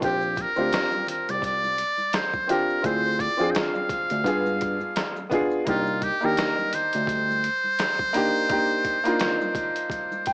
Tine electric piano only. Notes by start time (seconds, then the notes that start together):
0.03 A#1
0.58 D2
1.29 C2
2.85 D2
3.40 F2
4.11 D2
4.25 G2
5.67 C2
6.24 D#2
6.95 D2